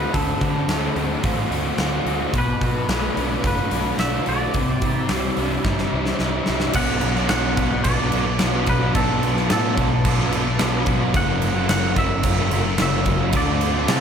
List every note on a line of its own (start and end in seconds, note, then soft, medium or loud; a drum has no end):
0.00 0.69 A3 medium
0.00 0.70 A3 medium
0.00 0.70 C4 medium
0.00 0.95 C4 medium
0.00 1.00 F#4 medium
0.00 1.50 F#4 medium
0.00 0.15 B4 medium
0.00 2.32 C5 medium
0.00 2.32 F#5 medium
0.00 6.73 D6 medium
0.13 0.33 D2 medium
0.13 1.52 D3 medium
0.13 0.42 D3 medium
0.13 0.93 A4 medium
0.13 kick loud
0.13 open hi-hat medium
0.41 0.60 D3 medium
0.41 1.81 D3 medium
0.41 kick medium
0.41 open hi-hat medium
0.68 0.88 D2 medium
0.68 1.22 A3 medium
0.68 2.06 A3 medium
0.68 snare loud
0.68 open hi-hat medium
0.96 1.15 D2 medium
0.96 1.78 C4 medium
0.96 1.52 C4 medium
0.96 open hi-hat soft
1.23 1.43 A1 medium
1.23 2.34 A3 medium
1.23 1.78 F#4 medium
1.23 kick loud
1.23 open hi-hat medium
1.50 1.70 D2 medium
1.50 2.35 C4 medium
1.50 2.05 F#4 medium
1.50 open hi-hat medium
1.78 1.98 D2 medium
1.78 2.35 C4 medium
1.78 2.35 F#4 medium
1.78 snare loud
1.78 open hi-hat medium
2.06 2.25 D2 medium
2.06 2.35 A3 medium
2.06 2.35 F#4 medium
2.06 open hi-hat soft
2.33 2.53 B1 medium
2.33 3.72 B2 medium
2.33 3.73 B2 medium
2.33 4.53 B4 medium
2.33 4.54 A5 medium
2.33 kick medium
2.33 open hi-hat medium
2.38 3.46 B4 medium
2.61 2.81 B2 medium
2.61 4.01 F#3 medium
2.61 kick medium
2.61 open hi-hat medium
2.88 3.08 B1 medium
2.88 3.42 A3 medium
2.88 4.26 A3 medium
2.88 snare loud
2.88 open hi-hat medium
3.16 3.36 B1 medium
3.16 3.73 D4 medium
3.16 3.99 D4 medium
3.16 open hi-hat medium
3.43 3.63 F#1 medium
3.43 4.54 A3 medium
3.43 3.99 F#4 medium
3.43 kick loud
3.43 open hi-hat medium
3.47 3.99 B4 medium
3.70 3.91 B1 medium
3.70 4.58 D4 medium
3.70 4.26 F#4 medium
3.70 open hi-hat medium
3.98 4.18 B1 medium
3.98 4.58 D4 medium
3.98 4.55 F#4 medium
3.98 4.28 E5 medium
3.98 snare medium
3.98 open hi-hat medium
4.26 4.47 B1 medium
4.26 4.55 A3 medium
4.26 4.55 F#4 medium
4.26 6.17 D5 loud
4.26 open hi-hat medium
4.54 4.74 C2 loud
4.54 5.93 C3 medium
4.54 6.73 C5 medium
4.54 6.73 E5 medium
4.54 kick loud
4.54 open hi-hat medium
4.82 5.01 C3 medium
4.82 6.21 E3 medium
4.82 kick medium
4.82 open hi-hat medium
5.09 5.29 C2 medium
5.09 6.47 G3 medium
5.09 5.64 G3 medium
5.09 snare loud
5.09 open hi-hat medium
5.37 5.57 C2 medium
5.37 5.91 D4 medium
5.37 6.19 D4 medium
5.37 open hi-hat soft
5.64 5.84 G1 medium
5.64 6.76 G3 medium
5.64 6.19 E4 medium
5.64 kick loud
5.64 snare medium
5.78 snare medium
5.92 6.12 C2 medium
5.92 6.75 D4 medium
5.92 6.46 E4 medium
6.06 snare medium
6.19 6.39 C2 medium
6.19 6.75 D4 medium
6.19 6.76 E4 medium
6.19 snare medium
6.46 6.67 C2 medium
6.46 6.76 G3 medium
6.46 6.75 E4 medium
6.46 snare medium
6.60 snare medium
6.73 7.01 B1 loud
6.73 7.29 B2 medium
6.73 7.30 B2 medium
6.73 7.18 F#3 medium
6.73 7.31 F#3 loud
6.73 7.18 B3 medium
6.73 7.15 B3 loud
6.73 7.18 D4 medium
6.73 11.11 B4 medium
6.73 7.28 F#5 loud
6.73 kick loud
6.73 crash loud
6.73 crash medium
6.78 7.15 F#4 medium
6.78 11.11 A5 medium
6.78 11.12 D6 medium
7.01 7.30 B1 medium
7.01 crash medium
7.15 7.31 F#3 medium
7.15 7.33 B3 medium
7.15 7.31 B3 medium
7.15 7.32 D4 medium
7.15 7.32 F#4 medium
7.15 snare soft
7.29 7.56 B1 loud
7.29 7.57 B2 medium
7.29 8.40 B2 medium
7.29 7.57 F#3 medium
7.29 7.59 F#3 loud
7.29 7.58 B3 loud
7.29 7.59 D4 loud
7.29 7.60 F#4 loud
7.29 7.83 F#5 loud
7.29 snare loud
7.29 crash medium
7.33 7.60 B3 loud
7.57 7.84 B1 medium
7.57 7.99 B2 medium
7.57 7.73 F#3 medium
7.57 7.72 F#3 medium
7.57 7.72 B3 medium
7.57 7.70 B3 medium
7.57 7.72 D4 medium
7.57 7.72 F#4 loud
7.57 kick medium
7.57 crash medium
7.72 muted distorted electric guitar stroke medium
7.72 muted overdriven electric guitar stroke soft
7.84 8.11 B1 medium
7.84 8.12 F#3 medium
7.84 8.02 B3 medium
7.84 8.00 D4 medium
7.84 7.99 F#4 medium
7.84 8.36 D5 medium
7.84 kick loud
7.84 crash medium
7.98 8.13 F#3 medium
7.98 8.14 B3 medium
7.98 8.14 D4 medium
7.98 8.15 F#4 medium
8.03 8.12 B3 medium
8.11 8.40 B1 medium
8.11 8.38 B2 medium
8.11 8.27 F#3 medium
8.11 8.25 F#3 medium
8.11 8.27 B3 medium
8.11 8.23 B3 medium
8.11 crash medium
8.15 8.26 D4 medium
8.15 8.27 F#4 medium
8.24 muted distorted electric guitar stroke medium
8.24 muted overdriven electric guitar stroke medium
8.39 8.94 B1 medium
8.39 8.66 B2 loud
8.39 8.94 B2 loud
8.39 8.56 F#3 loud
8.39 8.96 F#3 loud
8.39 8.84 B3 loud
8.39 8.51 B3 loud
8.39 8.82 D4 loud
8.39 snare loud
8.39 crash medium
8.43 8.81 F#4 loud
8.52 8.69 F#3 medium
8.52 8.69 B3 medium
8.66 8.93 B2 medium
8.66 8.95 F#3 medium
8.66 8.95 B4 loud
8.66 kick medium
8.66 crash medium
8.71 8.96 B3 medium
8.82 8.95 B3 medium
8.82 8.96 D4 medium
8.82 8.97 F#4 medium
8.94 9.47 B1 medium
8.94 9.49 B2 medium
8.94 9.39 F#3 loud
8.94 9.51 F#3 medium
8.94 9.38 B3 loud
8.94 9.34 B3 loud
8.94 9.37 D4 loud
8.94 9.35 F#4 medium
8.94 9.51 A4 loud
8.94 kick loud
8.94 crash medium
9.23 crash medium
9.36 9.51 F#3 medium
9.36 9.52 B3 medium
9.36 9.50 B3 medium
9.36 9.51 D4 medium
9.36 9.53 F#4 medium
9.36 snare soft
9.50 9.77 A2 medium
9.50 9.76 B2 loud
9.50 10.05 B2 loud
9.50 9.77 F#3 medium
9.50 9.78 F#3 loud
9.50 9.77 B3 loud
9.50 9.79 B3 medium
9.50 9.78 D4 medium
9.50 9.79 F#4 loud
9.50 10.84 A4 medium
9.50 snare loud
9.50 crash medium
9.77 10.04 B1 loud
9.77 10.19 B2 medium
9.77 9.91 F#3 medium
9.77 9.90 B3 medium
9.77 9.90 D4 medium
9.77 9.90 F#4 loud
9.77 kick medium
9.77 crash medium
9.91 muted overdriven electric guitar stroke soft
9.91 muted distorted electric guitar stroke medium
10.05 10.58 B1 loud
10.05 10.30 F#3 medium
10.05 10.20 B3 medium
10.05 10.19 D4 medium
10.05 10.18 F#4 medium
10.05 kick medium
10.05 crash medium
10.19 10.33 F#3 medium
10.19 10.35 B3 medium
10.19 10.32 B3 medium
10.19 10.33 D4 medium
10.19 10.33 F#4 medium
10.32 10.57 B2 medium
10.32 10.46 F#3 medium
10.32 10.46 B3 medium
10.32 10.45 D4 medium
10.32 10.45 F#4 medium
10.32 crash medium
10.36 10.45 B3 medium
10.46 muted distorted electric guitar stroke medium
10.46 muted overdriven electric guitar stroke medium
10.58 10.86 B1 loud
10.58 11.12 B2 loud
10.58 10.87 B2 loud
10.58 11.13 F#3 loud
10.58 10.75 F#3 loud
10.58 11.01 B3 loud
10.58 10.71 B3 loud
10.58 11.00 D4 loud
10.58 10.98 F#4 loud
10.58 snare loud
10.58 crash medium
10.73 10.88 F#3 medium
10.73 10.89 B3 medium
10.86 11.13 B1 medium
10.86 11.13 B2 medium
10.86 11.14 F#3 medium
10.86 kick medium
10.86 crash medium
10.90 11.15 B3 medium
10.99 11.14 B3 medium
10.99 11.13 D4 medium
10.99 11.12 F#4 medium
11.13 11.40 F#1 loud
11.13 11.68 F#2 medium
11.13 11.67 F#2 loud
11.13 11.69 C#3 medium
11.13 11.56 C#3 loud
11.13 11.57 E3 loud
11.13 11.56 A#3 medium
11.13 11.55 C#4 loud
11.13 11.54 F#4 loud
11.13 13.32 A#4 medium
11.13 13.32 F#5 medium
11.13 11.69 F#5 loud
11.13 13.32 E6 medium
11.13 kick loud
11.13 crash medium
11.18 11.53 F#3 loud
11.42 11.69 F#1 loud
11.42 crash medium
11.54 11.69 C#3 medium
11.54 11.69 E3 medium
11.54 11.71 F#3 medium
11.54 11.70 A#3 medium
11.54 11.71 C#4 medium
11.54 11.71 F#4 medium
11.68 11.96 F#1 medium
11.68 11.94 F#2 medium
11.68 12.24 F#2 loud
11.68 11.96 C#3 medium
11.68 12.25 C#3 medium
11.68 11.95 E3 medium
11.68 11.98 F#3 loud
11.68 11.96 A#3 medium
11.68 11.97 C#4 loud
11.68 11.98 F#4 loud
11.68 11.98 F#5 loud
11.68 snare loud
11.68 crash medium
11.96 12.23 F#1 medium
11.96 12.37 F#2 medium
11.96 12.10 C#3 medium
11.96 12.10 E3 loud
11.96 12.09 F#3 medium
11.96 12.10 A#3 medium
11.96 12.10 C#4 medium
11.96 12.10 F#4 loud
11.96 12.81 E5 loud
11.96 kick medium
11.96 crash medium
12.10 muted distorted electric guitar stroke medium
12.10 muted overdriven electric guitar stroke soft
12.23 12.50 F#1 loud
12.23 12.39 E3 medium
12.23 12.38 A#3 medium
12.23 12.38 C#4 medium
12.23 12.36 F#4 loud
12.23 kick medium
12.23 crash medium
12.37 12.52 C#3 medium
12.37 12.51 E3 medium
12.37 12.53 F#3 medium
12.37 12.52 A#3 medium
12.37 12.53 C#4 medium
12.37 12.54 F#4 medium
12.51 12.78 F#1 medium
12.51 12.77 F#2 medium
12.51 12.64 C#3 medium
12.51 12.65 E3 medium
12.51 12.64 F#3 medium
12.51 12.65 A#3 medium
12.51 12.65 C#4 medium
12.51 crash medium
12.55 12.64 F#4 medium
12.65 muted distorted electric guitar stroke medium
12.65 muted overdriven electric guitar stroke medium
12.78 13.32 F#1 medium
12.78 13.06 F#2 loud
12.78 13.32 F#2 loud
12.78 13.33 C#3 medium
12.78 12.95 C#3 loud
12.78 13.22 E3 loud
12.78 12.91 F#3 loud
12.78 13.21 A#3 loud
12.78 13.20 C#4 loud
12.78 13.19 F#4 loud
12.78 snare loud
12.78 crash medium
12.82 13.32 E5 medium
12.93 13.08 C#3 medium
12.93 13.09 F#3 medium
13.05 13.33 F#2 medium
13.05 13.33 C#3 medium
13.05 kick medium
13.05 crash medium
13.10 13.34 F#3 medium
13.21 13.33 E3 medium
13.21 13.33 A#3 medium
13.21 13.33 C#4 medium
13.21 13.33 F#4 medium
13.33 13.86 D2 loud
13.33 13.87 D3 medium
13.33 13.89 D3 medium
13.33 13.76 A3 loud
13.33 13.78 A3 loud
13.33 13.74 C4 medium
13.33 13.73 F#4 loud
13.33 14.00 C5 medium
13.33 14.00 A5 medium
13.33 14.00 D6 medium
13.33 kick loud
13.33 crash medium
13.37 13.74 D4 loud
13.37 14.00 D5 medium
13.61 crash medium
13.74 13.88 A3 medium
13.74 13.88 C4 medium
13.74 13.91 D4 medium
13.74 13.90 F#4 medium
13.79 13.90 A3 medium
13.88 14.00 C3 loud
13.88 14.00 D3 medium
13.88 14.00 A3 medium
13.88 14.00 A3 loud
13.88 14.00 C4 loud
13.88 14.00 F#4 loud
13.88 snare loud
13.88 crash medium
13.93 14.00 D4 loud